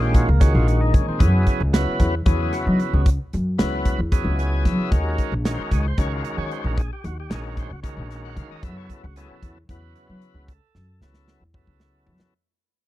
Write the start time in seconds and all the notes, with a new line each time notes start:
Already playing: A#1 A#2 D#3 G#3 C#4 F4
0.02 G4
0.14 F#4, kick, closed hi-hat
0.29 C#2 A#3
0.40 A#2 D#3 G#3 C#4 F#4, kick, snare, closed hi-hat
0.54 A#1 F4
0.68 F#4, closed hi-hat
0.81 D#4
0.94 D#3 C#4, kick, closed hi-hat
1.08 C4, muted upright bass stroke
1.18 F#2 C#3 F#3 B3 E4 G#4, kick, closed hi-hat
1.47 kick, closed hi-hat
1.60 C#2
1.73 C#3 F#3 B3 E4 B4, snare, closed hi-hat
1.87 muted upright bass stroke
1.99 E2, kick, closed hi-hat
2.26 E2 C#3 F#3 B3 E4 G#4, kick, closed hi-hat
2.42 G#4
2.53 F#4, snare, closed hi-hat
2.67 F#3 D#4
2.80 E4, closed hi-hat
2.93 C#2 G#3
3.06 kick, closed hi-hat
3.33 F#2, closed hi-hat
3.58 C#2 C#3 F#3 B3 E4 B4, snare, closed hi-hat
3.85 kick, closed hi-hat
3.98 E2
4.12 C#3 F#3 B3 E4 G#4, kick, closed hi-hat
4.24 C#2
4.39 G#5, closed hi-hat
4.65 F#3 E5, kick, snare, closed hi-hat
4.78 muted upright bass stroke
4.92 D#2 D#3 G#3 C#4 F#4 A#4, kick, closed hi-hat
5.18 kick, closed hi-hat
5.32 A#1
5.45 D#3 G#3 C#4 F#4 A#4, snare, closed hi-hat
5.54 C5, muted upright bass stroke
5.64 A#4
5.71 C#2 G#4, kick, closed hi-hat
5.88 C5
5.98 C#2 D#3 G#3 C#4 F#4 A#4 C#5, kick, closed hi-hat
6.13 F4
6.24 A#4, closed hi-hat
6.37 D#3 C#5
6.51 C5, closed hi-hat
6.64 A#1 A#4
6.78 G#4, kick, closed hi-hat
6.93 G4
7.04 D#2 F#4, closed hi-hat
7.20 G4
7.30 A#1 D#3 G#3 C#4 F#4 G#4 A#4, snare, closed hi-hat
7.47 A#4
7.57 C5, kick, closed hi-hat
7.70 C#2 F#4
7.83 D#3 G#3 C#4 F#4 A#4, kick, closed hi-hat
7.97 A#1
8.11 snare, closed hi-hat
8.25 F#5
8.37 D#3 F5, kick, closed hi-hat
8.51 D#5, muted upright bass stroke
8.63 F#2 C#3 F#3 B3 E4 A4 E5, kick, closed hi-hat
8.77 C#5
8.89 A4, kick, closed hi-hat
9.04 C#2 F#4
9.16 C#3 F#3 B3 E4 G#4 A4, closed hi-hat
9.29 C#4, muted upright bass stroke
9.43 E2, kick, closed hi-hat
9.69 E2 C#3 F#3 B3 E4 B4, kick, closed hi-hat
9.95 B4, closed hi-hat
10.09 F#3
10.22 closed hi-hat
10.34 C#2
10.48 A4, kick, closed hi-hat
10.75 F#2, snare
11.01 C#2 C#3 F#3 B3 E4 A4, snare
11.14 snare
11.28 snare
11.40 E2
11.54 C#3 F#3 B3 E4 A4, kick, mid tom
11.67 C#2, kick
11.80 snare
12.07 F#3, floor tom
12.20 muted upright bass stroke, snare